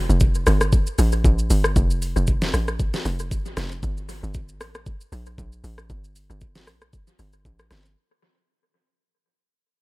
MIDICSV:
0, 0, Header, 1, 3, 480
1, 0, Start_track
1, 0, Tempo, 517241
1, 1634, Time_signature, 4, 2, 24, 8
1, 9104, End_track
2, 0, Start_track
2, 0, Title_t, "Log drum bass"
2, 0, Program_c, 0, 39
2, 88, Note_on_c, 0, 29, 102
2, 424, Note_off_c, 0, 29, 0
2, 438, Note_on_c, 0, 31, 97
2, 796, Note_off_c, 0, 31, 0
2, 916, Note_on_c, 0, 33, 106
2, 1147, Note_off_c, 0, 33, 0
2, 1156, Note_on_c, 0, 33, 100
2, 1387, Note_off_c, 0, 33, 0
2, 1395, Note_on_c, 0, 31, 97
2, 1627, Note_off_c, 0, 31, 0
2, 1635, Note_on_c, 0, 29, 107
2, 1994, Note_off_c, 0, 29, 0
2, 2008, Note_on_c, 0, 29, 100
2, 2344, Note_off_c, 0, 29, 0
2, 2356, Note_on_c, 0, 33, 92
2, 2715, Note_off_c, 0, 33, 0
2, 2834, Note_on_c, 0, 29, 109
2, 3075, Note_on_c, 0, 31, 94
2, 3089, Note_off_c, 0, 29, 0
2, 3307, Note_off_c, 0, 31, 0
2, 3314, Note_on_c, 0, 29, 94
2, 3546, Note_off_c, 0, 29, 0
2, 3555, Note_on_c, 0, 31, 106
2, 3915, Note_off_c, 0, 31, 0
2, 3928, Note_on_c, 0, 31, 97
2, 4273, Note_on_c, 0, 33, 84
2, 4287, Note_off_c, 0, 31, 0
2, 4634, Note_off_c, 0, 33, 0
2, 4753, Note_on_c, 0, 34, 96
2, 4986, Note_off_c, 0, 34, 0
2, 4995, Note_on_c, 0, 34, 90
2, 5227, Note_off_c, 0, 34, 0
2, 5232, Note_on_c, 0, 33, 101
2, 5466, Note_off_c, 0, 33, 0
2, 5474, Note_on_c, 0, 31, 105
2, 5834, Note_off_c, 0, 31, 0
2, 5846, Note_on_c, 0, 31, 98
2, 6195, Note_on_c, 0, 34, 95
2, 6209, Note_off_c, 0, 31, 0
2, 6554, Note_off_c, 0, 34, 0
2, 6675, Note_on_c, 0, 31, 92
2, 6907, Note_off_c, 0, 31, 0
2, 6915, Note_on_c, 0, 33, 99
2, 7147, Note_off_c, 0, 33, 0
2, 7156, Note_on_c, 0, 31, 99
2, 7387, Note_off_c, 0, 31, 0
2, 9104, End_track
3, 0, Start_track
3, 0, Title_t, "Drums"
3, 91, Note_on_c, 9, 82, 54
3, 184, Note_off_c, 9, 82, 0
3, 188, Note_on_c, 9, 82, 89
3, 194, Note_on_c, 9, 36, 101
3, 281, Note_off_c, 9, 82, 0
3, 287, Note_off_c, 9, 36, 0
3, 323, Note_on_c, 9, 82, 53
3, 416, Note_off_c, 9, 82, 0
3, 434, Note_on_c, 9, 37, 100
3, 434, Note_on_c, 9, 46, 55
3, 434, Note_on_c, 9, 82, 94
3, 526, Note_off_c, 9, 37, 0
3, 527, Note_off_c, 9, 46, 0
3, 527, Note_off_c, 9, 82, 0
3, 565, Note_on_c, 9, 82, 57
3, 566, Note_on_c, 9, 37, 90
3, 657, Note_off_c, 9, 82, 0
3, 659, Note_off_c, 9, 37, 0
3, 673, Note_on_c, 9, 82, 70
3, 674, Note_on_c, 9, 36, 116
3, 766, Note_off_c, 9, 82, 0
3, 767, Note_off_c, 9, 36, 0
3, 806, Note_on_c, 9, 82, 63
3, 898, Note_off_c, 9, 82, 0
3, 914, Note_on_c, 9, 46, 57
3, 914, Note_on_c, 9, 82, 98
3, 1007, Note_off_c, 9, 46, 0
3, 1007, Note_off_c, 9, 82, 0
3, 1042, Note_on_c, 9, 82, 64
3, 1135, Note_off_c, 9, 82, 0
3, 1155, Note_on_c, 9, 36, 103
3, 1158, Note_on_c, 9, 82, 85
3, 1248, Note_off_c, 9, 36, 0
3, 1251, Note_off_c, 9, 82, 0
3, 1287, Note_on_c, 9, 82, 48
3, 1380, Note_off_c, 9, 82, 0
3, 1396, Note_on_c, 9, 46, 53
3, 1396, Note_on_c, 9, 82, 92
3, 1489, Note_off_c, 9, 46, 0
3, 1489, Note_off_c, 9, 82, 0
3, 1525, Note_on_c, 9, 37, 94
3, 1529, Note_on_c, 9, 82, 56
3, 1617, Note_off_c, 9, 37, 0
3, 1622, Note_off_c, 9, 82, 0
3, 1634, Note_on_c, 9, 36, 113
3, 1634, Note_on_c, 9, 82, 77
3, 1727, Note_off_c, 9, 36, 0
3, 1727, Note_off_c, 9, 82, 0
3, 1768, Note_on_c, 9, 82, 50
3, 1861, Note_off_c, 9, 82, 0
3, 1875, Note_on_c, 9, 46, 54
3, 1875, Note_on_c, 9, 82, 92
3, 1968, Note_off_c, 9, 46, 0
3, 1968, Note_off_c, 9, 82, 0
3, 2010, Note_on_c, 9, 82, 53
3, 2103, Note_off_c, 9, 82, 0
3, 2109, Note_on_c, 9, 82, 90
3, 2114, Note_on_c, 9, 36, 100
3, 2201, Note_off_c, 9, 82, 0
3, 2207, Note_off_c, 9, 36, 0
3, 2245, Note_on_c, 9, 38, 74
3, 2245, Note_on_c, 9, 82, 55
3, 2337, Note_off_c, 9, 82, 0
3, 2338, Note_off_c, 9, 38, 0
3, 2355, Note_on_c, 9, 37, 98
3, 2355, Note_on_c, 9, 46, 57
3, 2355, Note_on_c, 9, 82, 97
3, 2448, Note_off_c, 9, 37, 0
3, 2448, Note_off_c, 9, 46, 0
3, 2448, Note_off_c, 9, 82, 0
3, 2487, Note_on_c, 9, 82, 58
3, 2488, Note_on_c, 9, 37, 88
3, 2579, Note_off_c, 9, 82, 0
3, 2581, Note_off_c, 9, 37, 0
3, 2594, Note_on_c, 9, 82, 71
3, 2595, Note_on_c, 9, 36, 116
3, 2687, Note_off_c, 9, 36, 0
3, 2687, Note_off_c, 9, 82, 0
3, 2727, Note_on_c, 9, 82, 66
3, 2728, Note_on_c, 9, 38, 78
3, 2819, Note_off_c, 9, 82, 0
3, 2820, Note_off_c, 9, 38, 0
3, 2835, Note_on_c, 9, 46, 57
3, 2835, Note_on_c, 9, 82, 99
3, 2927, Note_off_c, 9, 46, 0
3, 2927, Note_off_c, 9, 82, 0
3, 2962, Note_on_c, 9, 82, 62
3, 3055, Note_off_c, 9, 82, 0
3, 3075, Note_on_c, 9, 36, 102
3, 3078, Note_on_c, 9, 82, 86
3, 3168, Note_off_c, 9, 36, 0
3, 3171, Note_off_c, 9, 82, 0
3, 3208, Note_on_c, 9, 82, 48
3, 3300, Note_off_c, 9, 82, 0
3, 3313, Note_on_c, 9, 37, 95
3, 3313, Note_on_c, 9, 38, 69
3, 3315, Note_on_c, 9, 46, 56
3, 3315, Note_on_c, 9, 82, 90
3, 3405, Note_off_c, 9, 37, 0
3, 3405, Note_off_c, 9, 38, 0
3, 3408, Note_off_c, 9, 46, 0
3, 3408, Note_off_c, 9, 82, 0
3, 3450, Note_on_c, 9, 82, 54
3, 3543, Note_off_c, 9, 82, 0
3, 3554, Note_on_c, 9, 36, 120
3, 3554, Note_on_c, 9, 82, 74
3, 3647, Note_off_c, 9, 36, 0
3, 3647, Note_off_c, 9, 82, 0
3, 3688, Note_on_c, 9, 82, 50
3, 3781, Note_off_c, 9, 82, 0
3, 3795, Note_on_c, 9, 46, 56
3, 3795, Note_on_c, 9, 82, 92
3, 3888, Note_off_c, 9, 46, 0
3, 3888, Note_off_c, 9, 82, 0
3, 3932, Note_on_c, 9, 82, 52
3, 4025, Note_off_c, 9, 82, 0
3, 4029, Note_on_c, 9, 82, 84
3, 4034, Note_on_c, 9, 36, 105
3, 4122, Note_off_c, 9, 82, 0
3, 4127, Note_off_c, 9, 36, 0
3, 4164, Note_on_c, 9, 82, 55
3, 4257, Note_off_c, 9, 82, 0
3, 4276, Note_on_c, 9, 37, 98
3, 4276, Note_on_c, 9, 46, 57
3, 4276, Note_on_c, 9, 82, 92
3, 4369, Note_off_c, 9, 37, 0
3, 4369, Note_off_c, 9, 46, 0
3, 4369, Note_off_c, 9, 82, 0
3, 4407, Note_on_c, 9, 82, 58
3, 4408, Note_on_c, 9, 37, 90
3, 4499, Note_off_c, 9, 82, 0
3, 4501, Note_off_c, 9, 37, 0
3, 4514, Note_on_c, 9, 36, 115
3, 4514, Note_on_c, 9, 82, 73
3, 4607, Note_off_c, 9, 36, 0
3, 4607, Note_off_c, 9, 82, 0
3, 4648, Note_on_c, 9, 82, 64
3, 4740, Note_off_c, 9, 82, 0
3, 4755, Note_on_c, 9, 46, 57
3, 4755, Note_on_c, 9, 82, 97
3, 4848, Note_off_c, 9, 46, 0
3, 4848, Note_off_c, 9, 82, 0
3, 4883, Note_on_c, 9, 82, 62
3, 4976, Note_off_c, 9, 82, 0
3, 4995, Note_on_c, 9, 36, 99
3, 4998, Note_on_c, 9, 82, 88
3, 5088, Note_off_c, 9, 36, 0
3, 5091, Note_off_c, 9, 82, 0
3, 5127, Note_on_c, 9, 82, 48
3, 5220, Note_off_c, 9, 82, 0
3, 5234, Note_on_c, 9, 46, 56
3, 5234, Note_on_c, 9, 82, 88
3, 5327, Note_off_c, 9, 46, 0
3, 5327, Note_off_c, 9, 82, 0
3, 5364, Note_on_c, 9, 37, 90
3, 5368, Note_on_c, 9, 82, 53
3, 5457, Note_off_c, 9, 37, 0
3, 5461, Note_off_c, 9, 82, 0
3, 5474, Note_on_c, 9, 36, 116
3, 5474, Note_on_c, 9, 82, 76
3, 5567, Note_off_c, 9, 36, 0
3, 5567, Note_off_c, 9, 82, 0
3, 5607, Note_on_c, 9, 82, 50
3, 5700, Note_off_c, 9, 82, 0
3, 5715, Note_on_c, 9, 46, 53
3, 5715, Note_on_c, 9, 82, 92
3, 5808, Note_off_c, 9, 46, 0
3, 5808, Note_off_c, 9, 82, 0
3, 5850, Note_on_c, 9, 82, 53
3, 5943, Note_off_c, 9, 82, 0
3, 5947, Note_on_c, 9, 82, 85
3, 5954, Note_on_c, 9, 36, 102
3, 6040, Note_off_c, 9, 82, 0
3, 6046, Note_off_c, 9, 36, 0
3, 6083, Note_on_c, 9, 38, 75
3, 6083, Note_on_c, 9, 82, 57
3, 6176, Note_off_c, 9, 38, 0
3, 6176, Note_off_c, 9, 82, 0
3, 6193, Note_on_c, 9, 37, 97
3, 6193, Note_on_c, 9, 46, 55
3, 6193, Note_on_c, 9, 82, 94
3, 6286, Note_off_c, 9, 37, 0
3, 6286, Note_off_c, 9, 46, 0
3, 6286, Note_off_c, 9, 82, 0
3, 6325, Note_on_c, 9, 82, 57
3, 6326, Note_on_c, 9, 37, 90
3, 6417, Note_off_c, 9, 82, 0
3, 6419, Note_off_c, 9, 37, 0
3, 6432, Note_on_c, 9, 82, 73
3, 6434, Note_on_c, 9, 36, 116
3, 6525, Note_off_c, 9, 82, 0
3, 6527, Note_off_c, 9, 36, 0
3, 6565, Note_on_c, 9, 82, 67
3, 6658, Note_off_c, 9, 82, 0
3, 6672, Note_on_c, 9, 46, 57
3, 6672, Note_on_c, 9, 82, 97
3, 6765, Note_off_c, 9, 46, 0
3, 6765, Note_off_c, 9, 82, 0
3, 6800, Note_on_c, 9, 82, 60
3, 6893, Note_off_c, 9, 82, 0
3, 6915, Note_on_c, 9, 36, 98
3, 6917, Note_on_c, 9, 82, 89
3, 7008, Note_off_c, 9, 36, 0
3, 7010, Note_off_c, 9, 82, 0
3, 7045, Note_on_c, 9, 82, 49
3, 7048, Note_on_c, 9, 37, 96
3, 7138, Note_off_c, 9, 82, 0
3, 7141, Note_off_c, 9, 37, 0
3, 7152, Note_on_c, 9, 37, 95
3, 7152, Note_on_c, 9, 38, 69
3, 7154, Note_on_c, 9, 46, 55
3, 7154, Note_on_c, 9, 82, 90
3, 7244, Note_off_c, 9, 37, 0
3, 7244, Note_off_c, 9, 38, 0
3, 7247, Note_off_c, 9, 46, 0
3, 7247, Note_off_c, 9, 82, 0
3, 7289, Note_on_c, 9, 82, 55
3, 7382, Note_off_c, 9, 82, 0
3, 9104, End_track
0, 0, End_of_file